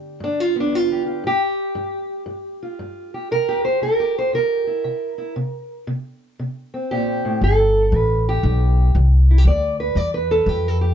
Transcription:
Already playing: G2 D3 G4
0.20 G2 D4
0.40 F4
0.56 B3
0.60 D4
0.73 G2 F4
0.92 G4
1.06 F4
1.24 G2 G4
1.75 G2
2.26 G2
2.63 F4
2.79 G2
3.14 G4
3.31 C3 A#4
3.49 G4
3.65 C5
3.81 C3 A#4
4.00 G4
4.18 C5
4.33 C3 A#4
4.67 E4
4.84 C3
5.18 E4
5.36 C3
5.87 C3
6.39 C3
6.74 C4
6.91 A#2 G4
7.25 A2
7.41 G1 G2 A4
7.92 A1 G2
7.96 B4
8.29 G4
8.43 B1 G2
8.95 C2 G2
9.31 E4
9.38 G4
9.45 D2 G3 D5
9.80 B4
9.95 E2 G3 D5
10.14 B4
10.31 A4
10.46 F2 G3 G4
10.68 A4
10.81 G4

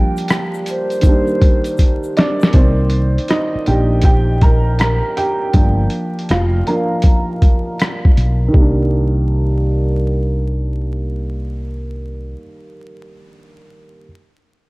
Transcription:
Already playing: F3 G3 A#3 D4 G5
0.17 closed hi-hat, shaker
0.28 cross-stick, closed hi-hat, shaker
0.54 shaker
0.66 C5, closed hi-hat, shaker
0.90 closed hi-hat, shaker
1.01 D#3 G3, kick, closed hi-hat, shaker
1.06 A#3 D4
1.27 shaker
1.42 kick, closed hi-hat
1.64 closed hi-hat, shaker
1.77 kick, closed hi-hat, shaker
2.03 shaker
2.17 D4 D5, snare, closed hi-hat
2.41 snare, shaker
2.53 C2 D#3 A#3 C4 C5 D5, kick, closed hi-hat
2.90 closed hi-hat
3.18 closed hi-hat
3.28 D#4 D#5, cross-stick, closed hi-hat
3.55 muted fretless electric bass stroke
3.66 A#1 D#3 A#3 D4 G4 G5, closed hi-hat
4.01 G4 G5, kick, closed hi-hat
4.41 A#4 A#5, kick, closed hi-hat
4.79 A#4 A#5, cross-stick, closed hi-hat
5.17 G4 G5, closed hi-hat
5.53 G1 F3 A#3 D4, kick, closed hi-hat
5.90 closed hi-hat
6.19 closed hi-hat
6.29 F1 F4 F5, cross-stick, closed hi-hat
6.67 F3 A#3 D4 A#4 A#5, closed hi-hat
7.02 kick, closed hi-hat
7.42 kick, closed hi-hat
7.79 cross-stick, closed hi-hat
8.05 kick
8.17 B1, closed hi-hat
8.48 D#3
8.52 C2 G3, kick
8.57 A#3
8.61 D4

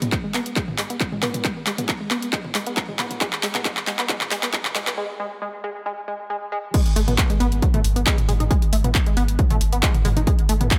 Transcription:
0.02 B3, closed hi-hat, mid tom
0.12 kick, clap, closed hi-hat
0.24 G#3
0.34 B3, clap, open hi-hat
0.46 closed hi-hat
0.56 G#3, kick, clap, closed hi-hat
0.68 mid tom
0.78 G#3, clap, open hi-hat
0.90 B3, closed hi-hat
1.00 kick, clap, closed hi-hat
1.12 G#3, mid tom
1.23 B3, clap, mid tom, open hi-hat
1.34 closed hi-hat, mid tom
1.45 G#3, kick, clap, closed hi-hat
1.67 G#3, clap, open hi-hat
1.78 B3, closed hi-hat, mid tom
1.89 kick, clap, closed hi-hat
2.01 G#3
2.11 B3, clap, open hi-hat
2.22 closed hi-hat
2.33 G#3, kick, clap, closed hi-hat
2.44 mid tom
2.55 G#3, clap, open hi-hat
2.67 B3, closed hi-hat
2.77 kick, clap, closed hi-hat
2.89 G#3, mid tom
2.99 B3, clap, mid tom, open hi-hat
3.11 closed hi-hat, mid tom
3.21 G#3, kick, clap, closed hi-hat
3.33 clap
3.43 G#3, clap, open hi-hat
3.55 B3, clap, closed hi-hat, mid tom
3.65 G#3, kick, clap, closed hi-hat
3.77 clap
3.87 G#3, clap, open hi-hat
3.99 B3, clap, closed hi-hat
4.09 G#3, kick, clap, closed hi-hat
4.21 clap, mid tom
4.31 G#3, clap, open hi-hat
4.43 B3, clap, closed hi-hat
4.53 G#3, kick, clap, closed hi-hat
4.65 clap, mid tom
4.75 G#3, clap, mid tom, open hi-hat
4.87 B3, clap, closed hi-hat, mid tom
4.98 G#3
5.20 G#3
5.42 G#3
5.64 G#3
5.86 G#3
6.08 G#3
6.30 G#3
6.52 G#3
6.74 G#3, kick, closed hi-hat, crash
6.86 G#1, closed hi-hat
6.96 G#1 A3, open hi-hat
7.08 G#1 B3, closed hi-hat, mid tom
7.18 kick, clap, closed hi-hat
7.30 G#1 G#3, closed hi-hat
7.40 G#1 B3, open hi-hat
7.52 G#1, closed hi-hat
7.62 F#3, kick, closed hi-hat
7.74 G#1 A3, closed hi-hat, mid tom
7.84 G#1, open hi-hat
7.96 G#1 B3, closed hi-hat
8.06 G#3, kick, clap, closed hi-hat
8.18 G#1, closed hi-hat, mid tom
8.28 G#1 G#3, mid tom, open hi-hat
8.40 G#1 D#4, closed hi-hat, mid tom
8.51 G#3, kick, closed hi-hat
8.62 G#1, closed hi-hat
8.73 G#1 A3, open hi-hat
8.84 G#1 B3, closed hi-hat, mid tom
8.95 kick, clap, closed hi-hat
9.06 G#1 G#3, closed hi-hat
9.17 G#1 B3, open hi-hat
9.28 G#1, closed hi-hat
9.39 F#3, kick, closed hi-hat
9.50 G#1 A3, closed hi-hat, mid tom
9.61 G#1, open hi-hat
9.73 G#1 B3, closed hi-hat
9.83 G#3, kick, clap, closed hi-hat
9.94 G#1, closed hi-hat, mid tom
10.05 G#1 G#3, mid tom, open hi-hat
10.17 G#1 D#4, closed hi-hat, mid tom
10.27 G#3, kick, closed hi-hat
10.39 G#1, closed hi-hat
10.49 G#1 A3, open hi-hat
10.61 G#1 B3, closed hi-hat, mid tom
10.71 kick, clap, closed hi-hat

